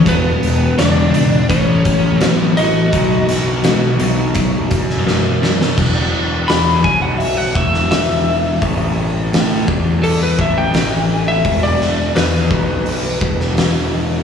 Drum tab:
CC |----------------|----------------|x---------------|----------------|
HH |x-x-x-x-x-x-x-x-|x-x-x-x-x-x-----|----o---o---o---|o---o---o---o---|
SD |----o-------o---|--o-o------oo-oo|----o------oo---|----o-------o---|
BD |o-------o-o-----|o-------o-o-----|o-----o---o-----|o-----o---o-----|

CC |----------------|
HH |o---o---o---o---|
SD |--o-o------oo---|
BD |o-----o---o-----|